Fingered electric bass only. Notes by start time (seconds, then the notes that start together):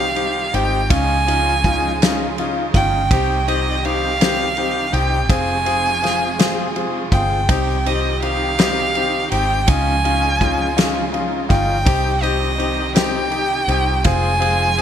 Already playing: C2
0.54 G#1
0.90 C#2
2.74 G1
3.11 C2
4.93 C2
5.29 F1
7.12 G1
7.49 C2
9.32 G#1
9.68 C#2
11.50 G1
11.87 C2
13.68 C2
14.05 F1